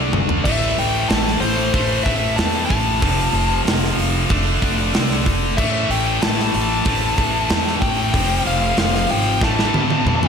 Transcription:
Already playing: upright bass C2, distorted electric guitar D3 A3 D4
0.12 upright bass F1, mid tom
0.29 floor tom
0.44 upright bass A1, distorted electric guitar A2 E3 A3, lead electric guitar E5, kick, open hi-hat, crash
0.78 upright bass A1, lead electric guitar G5, open hi-hat
1.09 upright bass A1, lead electric guitar A5, snare, open hi-hat
1.27 snare
1.40 upright bass A1, lead electric guitar C5, open hi-hat
1.73 upright bass A1, distorted electric guitar A2 E3 A3, kick, open hi-hat
2.03 upright bass A1, lead electric guitar E5, kick, open hi-hat
2.36 upright bass E2, lead electric guitar A5, snare, open hi-hat
2.66 upright bass A1, lead electric guitar A5
2.70 kick, open hi-hat
3.01 upright bass F1, distorted electric guitar F2 C3 F3, kick, open hi-hat
3.33 upright bass F1, open hi-hat
3.65 upright bass F1, snare, open hi-hat
3.84 snare
3.97 upright bass F1, open hi-hat
4.29 upright bass F1, distorted electric guitar D3 A3 D4, kick, open hi-hat
4.62 upright bass F1, kick, open hi-hat
4.93 upright bass C2, snare, open hi-hat
5.11 snare
5.26 upright bass F1, kick, open hi-hat
5.58 upright bass A1, distorted electric guitar A2 E3 A3, lead electric guitar E5, kick, crash
5.89 upright bass A1, lead electric guitar G5, open hi-hat
6.22 upright bass A1, lead electric guitar A5, snare, open hi-hat
6.39 snare
6.54 upright bass A1, lead electric guitar A5, open hi-hat
6.85 upright bass A1, distorted electric guitar A2 E3 A3, kick, open hi-hat
7.18 upright bass A1, kick, open hi-hat
7.50 upright bass E2, snare, open hi-hat
7.67 snare
7.81 upright bass A1, lead electric guitar G5, kick, open hi-hat
8.14 upright bass F1, distorted electric guitar F2 C3 F3, kick, open hi-hat
8.45 upright bass F1, lead electric guitar F5, open hi-hat
8.77 upright bass F1, lead electric guitar F5, snare, open hi-hat
8.95 snare
9.09 upright bass G#1, lead electric guitar G5, open hi-hat
9.41 upright bass A1, distorted electric guitar A2 E3 A3, lead electric guitar A5, kick, snare
9.59 snare
9.74 upright bass A1, high tom
9.90 high tom
10.05 upright bass E2, mid tom
10.23 mid tom

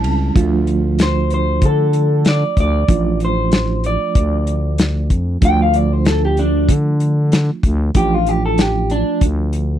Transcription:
Already playing: reed electric piano G3 C4 C#4 E4, clean electric guitar A5
0.04 fm bass C#2, ride
0.34 fm bass D2, reed electric piano F3 A3 D4 F4, kick, closed hi-hat
0.67 closed hi-hat
0.99 clean electric guitar C5, snare, closed hi-hat
1.30 clean electric guitar C5, closed hi-hat
1.62 fm bass D3, clean electric guitar A4, kick, closed hi-hat
1.93 closed hi-hat
2.25 clean electric guitar D5, snare, closed hi-hat
2.57 fm bass D2, clean electric guitar D5, kick, closed hi-hat
2.88 fm bass A1, reed electric piano F3 A3 D4 F4, kick, closed hi-hat
3.20 closed hi-hat
3.25 clean electric guitar C5
3.52 snare, closed hi-hat
3.84 clean electric guitar D5, closed hi-hat
4.15 fm bass D2, kick, closed hi-hat
4.47 closed hi-hat
4.78 snare, closed hi-hat
5.10 fm bass F2, kick, closed hi-hat
5.41 fm bass D2, reed electric piano F3 A3 D4 F4, kick, closed hi-hat
5.45 clean electric guitar G5
5.62 clean electric guitar F5
5.74 clean electric guitar D5, closed hi-hat
5.93 clean electric guitar C5
6.05 clean electric guitar A4, snare, closed hi-hat
6.25 clean electric guitar G4
6.37 clean electric guitar D4, closed hi-hat
6.69 fm bass D3, kick, closed hi-hat
7.00 closed hi-hat
7.32 snare, closed hi-hat
7.63 fm bass D2, kick, closed hi-hat
7.94 fm bass A1, reed electric piano F3 A3 D4 F4, clean electric guitar G4, kick, closed hi-hat
8.14 clean electric guitar F4
8.27 clean electric guitar G4, closed hi-hat
8.46 clean electric guitar A4
8.58 clean electric guitar G4, snare, closed hi-hat
8.90 clean electric guitar D4, closed hi-hat
9.21 fm bass D2, kick, closed hi-hat
9.53 closed hi-hat

